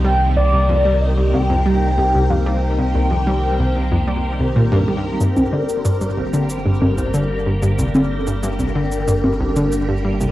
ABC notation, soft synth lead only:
X:1
M:4/4
L:1/8
Q:1/4=93
K:Cm
V:1 name="Soft synth lead"
g d2 e g3 f | g6 z2 | g d2 d c B2 c | d2 g4- g z |]